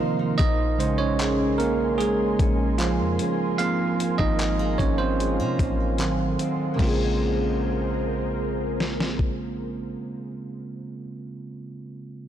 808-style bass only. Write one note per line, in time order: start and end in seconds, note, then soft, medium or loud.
0.39 2.35 A#1 loud
2.39 3.01 A#1 loud
3.00 3.18 F2 medium
4.19 4.77 G#1 loud
4.79 5.41 G#1 loud
5.40 5.58 C3 medium
5.59 6.36 A1 loud
6.79 9.96 A#1 loud